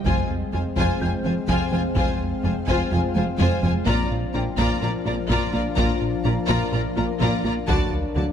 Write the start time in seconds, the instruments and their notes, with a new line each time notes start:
Already playing: grand piano F5 F6
0.05 double bass section F1, cello section F2, analog synth bass F2, synth arpeggio sound F3, french horn section G#3 C4, ambient pad G#3 C4 C5 F5, viola section F4, violin section C5 G#5, taiko
0.31 analog synth bass F2
0.53 double bass section F1, cello section F2, analog synth bass F2, synth arpeggio sound G#3, viola section F4, violin section C5 G#5
0.76 double bass section F1, analog synth bass F2, cello section F2, synth arpeggio sound F3, viola section F4, violin section C5 G#5, taiko
1.00 double bass section F1, cello section F2, analog synth bass F2, synth arpeggio sound F4, viola section F4, violin section C5 G#5, grand piano G5 G6
1.25 double bass section F1, cello section F2, analog synth bass F3, synth arpeggio sound C4, viola section F4, violin section C5 G#5
1.48 double bass section F1, cello section F2, analog synth bass F2, synth arpeggio sound F3, viola section F4, violin section C5 G#5, grand piano G5, taiko
1.73 double bass section F1, cello section F2, analog synth bass F3, synth arpeggio sound C4, viola section F4, violin section C5 G#5
1.96 double bass section F1, cello section F2, analog synth bass F2, synth arpeggio sound F3, viola section F4, violin section C5 G#5, taiko
2.21 analog synth bass F2
2.43 double bass section F1, cello section F2, analog synth bass F2, synth arpeggio sound G#3, viola section F4, violin section C5 G#5
2.67 double bass section F1, cello section F2, analog synth bass F2, synth arpeggio sound F3, viola section F4, violin section C5 G#5, taiko
2.91 double bass section F1, analog synth bass F2, cello section F2, synth arpeggio sound F4, grand piano F4 F5, viola section F4, violin section C5 G#5
3.15 double bass section F1, cello section F2, analog synth bass F3, synth arpeggio sound C4, viola section F4, violin section C5 G#5, taiko high
3.39 double bass section F1, analog synth bass F2, cello section F2, synth arpeggio sound F3, viola section F4, violin section C5 G#5, taiko high
3.63 double bass section F1, cello section F2, analog synth bass F3, synth arpeggio sound C4, viola section F4, violin section C5 G#5, taiko low
3.87 double bass section A#1, cello section A#2, analog synth bass A#2, ambient pad F3 D4 A#4 F5, french horn section F3 D4, synth arpeggio sound A#3, viola section F4, violin section D5 A#5, taiko
4.11 analog synth bass A#2
4.34 double bass section A#1, analog synth bass A#2, cello section A#2, synth arpeggio sound D4, viola section F4, violin section D5 A#5, grand piano G5
4.58 double bass section A#1, analog synth bass A#2, cello section A#2, synth arpeggio sound A#3, viola section F4, violin section D5 A#5, taiko
4.81 double bass section A#1, analog synth bass A#2, cello section A#2, viola section F4, synth arpeggio sound A#4, violin section D5 A#5
5.05 double bass section A#1, cello section A#2, analog synth bass A#3, synth arpeggio sound F4, viola section F4, violin section D5 A#5
5.29 double bass section A#1, analog synth bass A#2, cello section A#2, synth arpeggio sound A#3, viola section F4, violin section D5 A#5, taiko
5.53 double bass section A#1, cello section A#2, analog synth bass A#3, synth arpeggio sound F4, viola section F4, violin section D5 A#5
5.76 double bass section A#1, analog synth bass A#2, cello section A#2, synth arpeggio sound A#3, viola section F4, grand piano F4 F5, violin section D5 A#5, taiko
6.01 analog synth bass A#2
6.25 double bass section A#1, analog synth bass A#2, cello section A#2, synth arpeggio sound D4, viola section F4, violin section D5 A#5, grand piano A#5
6.48 double bass section A#1, analog synth bass A#2, cello section A#2, synth arpeggio sound A#3, viola section F4, violin section D5 A#5, taiko
6.72 double bass section A#1, analog synth bass A#2, cello section A#2, viola section F4, synth arpeggio sound A#4, violin section D5 A#5
6.96 double bass section A#1, cello section A#2, analog synth bass A#3, viola section F4, synth arpeggio sound F4, violin section D5 A#5
7.20 double bass section A#1, cello section A#2, analog synth bass A#2, synth arpeggio sound A#3, viola section F4, violin section D5 A#5, taiko
7.44 double bass section A#1, cello section A#2, analog synth bass A#3, synth arpeggio sound F4, viola section F4, violin section D5 A#5
7.68 double bass section D2, analog synth bass D2, synth arpeggio sound D3, cello section D3, french horn section F#3 D4, ambient pad F#3 D4 A4 F#5, viola section F#4, violin section D5 A5, grand piano B5, taiko
7.93 analog synth bass D2
8.16 analog synth bass D2, double bass section D2, cello section D3, synth arpeggio sound F#3, viola section F#4, violin section D5 A5